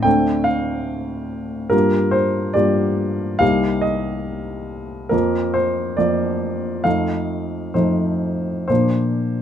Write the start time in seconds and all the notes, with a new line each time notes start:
0.03 D2 A3 C4 D4 G5
0.44 F5
1.70 G2 G3 A#3 F4 A#4
2.11 C5
2.54 G2 G3 A#3 F4 D5
3.39 C2 G3 A#3 D#4 F5
3.81 D#5
5.09 F2 F3 A#3 F4 A#4
5.54 C5
5.97 F2 F3 A#3 F4 D5
6.84 F2 F3 A3 D#4 F5
7.74 F2 F3 A3 D#4 C5
8.68 A#2 F3 A#3 D4 C5